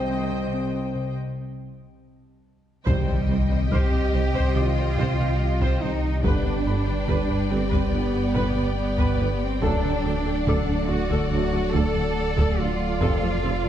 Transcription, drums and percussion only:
2.87 taiko medium
3.71 taiko medium
4.35 taiko medium
4.98 taiko medium
5.61 taiko medium
6.24 taiko medium
7.09 taiko medium
7.72 taiko medium
8.35 taiko medium
8.98 taiko medium
9.62 taiko medium
10.47 taiko medium
11.10 taiko medium
11.74 taiko medium
12.37 taiko medium
13.01 taiko medium

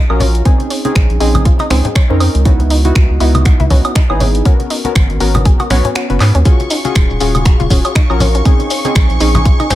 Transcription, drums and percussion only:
0.10 high woodblock medium
0.20 open hi-hat loud
0.20 muted conga medium
0.20 low conga medium
0.35 closed hi-hat soft
0.45 kick loud
0.45 closed hi-hat medium
0.60 closed hi-hat soft
0.60 muted conga soft
0.70 open hi-hat loud
0.85 closed hi-hat medium
0.85 muted conga medium
0.95 finger snap loud
0.95 kick loud
0.95 closed hi-hat medium
1.10 closed hi-hat soft
1.20 open hi-hat loud
1.35 closed hi-hat medium
1.35 high conga medium
1.35 low conga medium
1.35 high woodblock medium
1.45 kick loud
1.45 closed hi-hat medium
1.59 closed hi-hat soft
1.59 muted conga medium
1.59 high woodblock medium
1.70 finger snap medium
1.70 open hi-hat loud
1.70 low conga medium
1.85 closed hi-hat soft
1.85 low conga medium
1.95 finger snap loud
1.95 kick loud
1.95 closed hi-hat medium
2.10 muted conga medium
2.20 open hi-hat loud
2.20 high woodblock medium
2.35 closed hi-hat soft
2.45 kick loud
2.45 closed hi-hat medium
2.60 closed hi-hat soft
2.60 muted conga medium
2.70 open hi-hat loud
2.85 closed hi-hat medium
2.85 muted conga medium
2.95 finger snap loud
2.95 kick loud
2.95 closed hi-hat medium
3.20 open hi-hat loud
3.35 closed hi-hat medium
3.35 high conga medium
3.35 high woodblock medium
3.45 finger snap medium
3.45 kick loud
3.45 closed hi-hat medium
3.60 closed hi-hat soft
3.60 high conga medium
3.70 kick medium
3.70 open hi-hat medium
3.70 low conga medium
3.85 closed hi-hat medium
3.85 high woodblock medium
3.95 finger snap loud
3.95 kick loud
3.95 closed hi-hat medium
4.10 high woodblock medium
4.20 open hi-hat medium
4.20 muted conga medium
4.20 low conga medium
4.35 closed hi-hat medium
4.45 kick loud
4.45 closed hi-hat medium
4.60 closed hi-hat soft
4.60 muted conga medium
4.70 open hi-hat loud
4.84 closed hi-hat medium
4.84 muted conga medium
4.84 high conga medium
4.95 finger snap loud
4.95 kick loud
4.95 closed hi-hat medium
5.10 closed hi-hat soft
5.20 open hi-hat loud
5.34 closed hi-hat medium
5.34 high conga medium
5.34 low conga medium
5.34 high woodblock medium
5.45 kick loud
5.45 closed hi-hat medium
5.60 closed hi-hat soft
5.60 muted conga medium
5.60 high woodblock medium
5.70 finger snap medium
5.70 open hi-hat loud
5.70 low conga medium
5.84 closed hi-hat medium
5.84 low conga medium
5.95 finger snap loud
5.95 closed hi-hat medium
6.10 closed hi-hat soft
6.10 muted conga soft
6.20 clap medium
6.20 open hi-hat medium
6.20 high woodblock medium
6.35 closed hi-hat medium
6.45 kick loud
6.45 closed hi-hat medium
6.45 shaker soft
6.60 closed hi-hat soft
6.60 muted conga medium
6.60 shaker soft
6.70 open hi-hat loud
6.70 shaker medium
6.85 closed hi-hat medium
6.85 muted conga medium
6.85 shaker soft
6.95 finger snap loud
6.95 kick loud
6.95 closed hi-hat medium
6.95 shaker soft
7.10 shaker soft
7.20 open hi-hat loud
7.20 shaker medium
7.35 closed hi-hat medium
7.35 high conga medium
7.35 high woodblock medium
7.35 shaker soft
7.45 finger snap medium
7.45 kick loud
7.45 closed hi-hat medium
7.45 shaker soft
7.60 closed hi-hat soft
7.60 high conga medium
7.60 shaker soft
7.70 kick medium
7.70 open hi-hat loud
7.70 low conga medium
7.70 shaker medium
7.85 closed hi-hat medium
7.85 high woodblock medium
7.85 shaker soft
7.95 finger snap loud
7.95 kick loud
7.95 closed hi-hat medium
7.95 shaker soft
8.10 high woodblock medium
8.10 shaker soft
8.20 open hi-hat loud
8.20 muted conga medium
8.20 low conga medium
8.20 shaker medium
8.35 closed hi-hat medium
8.35 shaker soft
8.45 kick loud
8.45 closed hi-hat medium
8.45 shaker soft
8.60 closed hi-hat soft
8.60 muted conga medium
8.60 shaker soft
8.70 open hi-hat loud
8.70 shaker medium
8.85 closed hi-hat medium
8.85 muted conga medium
8.85 shaker soft
8.95 finger snap loud
8.95 kick loud
8.95 closed hi-hat medium
8.95 shaker soft
9.10 closed hi-hat soft
9.10 shaker soft
9.20 open hi-hat loud
9.20 shaker medium
9.35 closed hi-hat medium
9.35 high conga medium
9.35 low conga medium
9.35 high woodblock medium
9.35 shaker soft
9.45 kick loud
9.45 closed hi-hat medium
9.45 shaker soft
9.60 closed hi-hat soft
9.60 muted conga medium
9.60 high woodblock medium
9.60 shaker soft
9.70 finger snap medium
9.70 open hi-hat loud
9.70 low conga loud
9.70 shaker medium

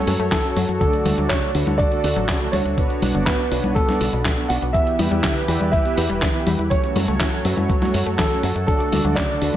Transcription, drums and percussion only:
0.07 open hi-hat loud
0.20 closed hi-hat soft
0.32 kick loud
0.32 snare loud
0.32 clap medium
0.32 closed hi-hat medium
0.44 closed hi-hat soft
0.57 open hi-hat medium
0.69 closed hi-hat soft
0.81 kick loud
0.81 closed hi-hat medium
0.93 closed hi-hat soft
1.06 open hi-hat medium
1.06 high conga medium
1.18 closed hi-hat soft
1.30 kick loud
1.30 snare loud
1.30 clap loud
1.30 closed hi-hat medium
1.42 closed hi-hat soft
1.55 open hi-hat medium
1.67 closed hi-hat soft
1.67 high conga medium
1.79 kick loud
1.79 closed hi-hat medium
1.92 closed hi-hat soft
2.04 open hi-hat loud
2.16 closed hi-hat soft
2.29 kick loud
2.29 snare loud
2.29 clap loud
2.29 closed hi-hat medium
2.41 closed hi-hat soft
2.53 open hi-hat medium
2.53 high conga medium
2.65 closed hi-hat soft
2.78 kick loud
2.78 closed hi-hat medium
2.90 closed hi-hat soft
3.02 open hi-hat loud
3.02 high conga medium
3.15 closed hi-hat soft
3.27 kick loud
3.27 snare loud
3.27 clap loud
3.27 closed hi-hat medium
3.39 closed hi-hat soft
3.52 open hi-hat medium
3.64 closed hi-hat soft
3.64 high conga medium
3.76 kick loud
3.76 closed hi-hat medium
3.89 snare soft
3.89 closed hi-hat soft
3.89 high conga medium
4.01 open hi-hat loud
4.13 closed hi-hat soft
4.25 kick loud
4.25 snare loud
4.25 clap medium
4.25 closed hi-hat medium
4.38 closed hi-hat soft
4.50 open hi-hat medium
4.62 closed hi-hat soft
4.74 kick loud
4.74 closed hi-hat medium
4.87 closed hi-hat soft
4.99 open hi-hat loud
4.99 high conga medium
5.12 closed hi-hat soft
5.24 kick loud
5.24 snare loud
5.24 clap medium
5.24 closed hi-hat medium
5.36 closed hi-hat soft
5.48 open hi-hat medium
5.61 closed hi-hat soft
5.61 high conga medium
5.73 kick loud
5.73 closed hi-hat medium
5.85 closed hi-hat soft
5.98 open hi-hat loud
6.10 closed hi-hat soft
6.22 kick loud
6.22 snare loud
6.22 clap medium
6.22 closed hi-hat medium
6.34 closed hi-hat soft
6.47 open hi-hat loud
6.47 high conga medium
6.59 closed hi-hat soft
6.71 kick loud
6.71 closed hi-hat medium
6.84 closed hi-hat soft
6.96 open hi-hat loud
6.96 high conga medium
7.08 closed hi-hat soft
7.20 kick loud
7.20 snare loud
7.20 clap medium
7.20 closed hi-hat medium
7.33 closed hi-hat soft
7.45 open hi-hat loud
7.57 closed hi-hat soft
7.57 high conga medium
7.70 kick loud
7.70 closed hi-hat medium
7.82 snare soft
7.82 closed hi-hat soft
7.82 high conga medium
7.94 open hi-hat loud
8.07 closed hi-hat soft
8.19 kick loud
8.19 snare loud
8.19 clap medium
8.19 closed hi-hat medium
8.31 closed hi-hat soft
8.43 open hi-hat medium
8.56 closed hi-hat soft
8.68 kick loud
8.68 closed hi-hat medium
8.80 closed hi-hat soft
8.93 open hi-hat loud
8.93 high conga medium
9.05 closed hi-hat soft
9.17 kick loud
9.17 snare loud
9.17 clap medium
9.17 closed hi-hat medium
9.29 closed hi-hat soft
9.42 open hi-hat loud

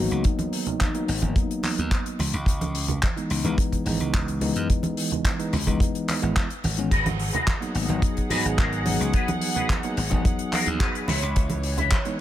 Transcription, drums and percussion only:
0.11 closed hi-hat soft
0.24 kick loud
0.24 closed hi-hat medium
0.39 closed hi-hat medium
0.39 high conga medium
0.53 open hi-hat loud
0.67 closed hi-hat soft
0.67 low conga medium
0.80 kick loud
0.80 clap loud
0.80 closed hi-hat loud
0.80 high conga medium
0.95 closed hi-hat medium
1.08 open hi-hat loud
1.22 kick soft
1.22 closed hi-hat soft
1.22 high conga medium
1.36 kick loud
1.36 closed hi-hat medium
1.51 closed hi-hat medium
1.63 clap medium
1.63 open hi-hat medium
1.63 high conga medium
1.78 closed hi-hat soft
1.91 kick loud
1.91 clap medium
1.91 closed hi-hat medium
2.06 closed hi-hat medium
2.19 open hi-hat medium
2.19 high conga medium
2.34 closed hi-hat soft
2.46 kick medium
2.46 closed hi-hat loud
2.61 closed hi-hat soft
2.61 high conga medium
2.75 open hi-hat loud
2.88 closed hi-hat soft
2.88 low conga medium
3.02 kick loud
3.02 clap loud
3.02 closed hi-hat medium
3.02 high conga medium
3.17 closed hi-hat medium
3.30 open hi-hat medium
3.44 closed hi-hat medium
3.44 high conga medium
3.58 kick loud
3.58 closed hi-hat loud
3.72 kick medium
3.72 closed hi-hat medium
3.86 open hi-hat loud
3.86 high conga medium
4.00 closed hi-hat soft
4.14 kick loud
4.14 clap loud
4.14 closed hi-hat medium
4.28 closed hi-hat medium
4.41 open hi-hat loud
4.41 high conga medium
4.56 closed hi-hat medium
4.70 kick loud
4.70 closed hi-hat medium
4.83 closed hi-hat medium
4.83 high conga medium
4.97 open hi-hat loud
5.11 closed hi-hat medium
5.11 low conga medium
5.25 kick loud
5.25 clap loud
5.25 closed hi-hat loud
5.25 high conga medium
5.40 closed hi-hat medium
5.53 open hi-hat loud
5.53 low conga medium
5.67 kick medium
5.67 closed hi-hat medium
5.67 high conga medium
5.80 kick loud
5.80 closed hi-hat loud
5.95 closed hi-hat medium
6.08 clap medium
6.08 open hi-hat loud
6.08 high conga medium
6.22 closed hi-hat medium
6.36 kick loud
6.36 clap loud
6.36 closed hi-hat medium
6.50 closed hi-hat medium
6.64 open hi-hat medium
6.64 high conga medium
6.77 closed hi-hat medium
6.91 kick loud
6.91 closed hi-hat loud
6.91 crash medium
7.06 closed hi-hat medium
7.06 high conga medium
7.19 open hi-hat loud
7.34 closed hi-hat soft
7.34 low conga medium
7.47 kick loud
7.47 clap loud
7.47 closed hi-hat medium
7.47 high conga medium
7.62 closed hi-hat medium
7.75 open hi-hat medium
7.89 closed hi-hat medium
7.89 high conga medium
8.02 kick loud
8.02 closed hi-hat medium
8.17 kick medium
8.17 closed hi-hat medium
8.30 open hi-hat loud
8.30 high conga medium
8.45 closed hi-hat soft
8.58 kick loud
8.58 clap loud
8.58 closed hi-hat medium
8.73 closed hi-hat medium
8.86 open hi-hat loud
8.86 high conga medium
9.01 closed hi-hat medium
9.13 kick loud
9.13 closed hi-hat medium
9.28 closed hi-hat medium
9.28 high conga medium
9.41 open hi-hat loud
9.56 closed hi-hat soft
9.56 low conga medium
9.69 kick loud
9.69 clap loud
9.69 closed hi-hat medium
9.69 high conga medium
9.83 closed hi-hat medium
9.97 open hi-hat loud
10.11 kick medium
10.11 closed hi-hat soft
10.11 high conga medium
10.25 kick loud
10.25 closed hi-hat loud
10.39 closed hi-hat medium
10.52 clap medium
10.52 open hi-hat loud
10.52 high conga medium
10.66 closed hi-hat medium
10.80 kick loud
10.80 clap loud
10.80 closed hi-hat medium
10.95 closed hi-hat medium
11.08 open hi-hat loud
11.08 high conga medium
11.22 closed hi-hat soft
11.36 kick loud
11.36 closed hi-hat loud
11.50 closed hi-hat soft
11.50 high conga medium
11.63 open hi-hat medium
11.78 closed hi-hat medium
11.78 low conga medium
11.91 kick loud
11.91 clap loud
11.91 closed hi-hat medium
11.91 high conga medium
12.05 closed hi-hat soft

